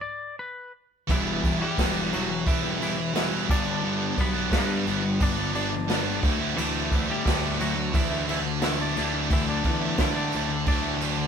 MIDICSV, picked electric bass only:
0, 0, Header, 1, 2, 480
1, 0, Start_track
1, 0, Key_signature, 1, "minor"
1, 0, Tempo, 684151
1, 764, Time_signature, 4, 2, 24, 8
1, 7909, End_track
2, 0, Start_track
2, 0, Title_t, "Picked electric bass"
2, 0, Program_c, 0, 34
2, 771, Note_on_c, 0, 28, 99
2, 995, Note_off_c, 0, 28, 0
2, 1008, Note_on_c, 0, 28, 94
2, 1120, Note_off_c, 0, 28, 0
2, 1248, Note_on_c, 0, 28, 95
2, 1473, Note_off_c, 0, 28, 0
2, 1501, Note_on_c, 0, 28, 106
2, 1720, Note_off_c, 0, 28, 0
2, 1730, Note_on_c, 0, 28, 103
2, 2454, Note_off_c, 0, 28, 0
2, 2454, Note_on_c, 0, 31, 103
2, 2903, Note_off_c, 0, 31, 0
2, 2933, Note_on_c, 0, 35, 91
2, 3156, Note_off_c, 0, 35, 0
2, 3168, Note_on_c, 0, 43, 115
2, 3394, Note_off_c, 0, 43, 0
2, 3411, Note_on_c, 0, 31, 100
2, 3635, Note_off_c, 0, 31, 0
2, 3652, Note_on_c, 0, 31, 118
2, 4341, Note_off_c, 0, 31, 0
2, 4372, Note_on_c, 0, 38, 115
2, 4596, Note_off_c, 0, 38, 0
2, 4608, Note_on_c, 0, 38, 104
2, 4834, Note_off_c, 0, 38, 0
2, 4853, Note_on_c, 0, 38, 94
2, 4963, Note_off_c, 0, 38, 0
2, 5092, Note_on_c, 0, 38, 109
2, 5316, Note_off_c, 0, 38, 0
2, 5330, Note_on_c, 0, 38, 110
2, 5554, Note_off_c, 0, 38, 0
2, 5572, Note_on_c, 0, 38, 112
2, 6261, Note_off_c, 0, 38, 0
2, 6299, Note_on_c, 0, 38, 105
2, 6746, Note_off_c, 0, 38, 0
2, 6771, Note_on_c, 0, 40, 97
2, 6995, Note_off_c, 0, 40, 0
2, 7007, Note_on_c, 0, 50, 110
2, 7232, Note_off_c, 0, 50, 0
2, 7257, Note_on_c, 0, 38, 92
2, 7478, Note_off_c, 0, 38, 0
2, 7489, Note_on_c, 0, 38, 112
2, 7909, Note_off_c, 0, 38, 0
2, 7909, End_track
0, 0, End_of_file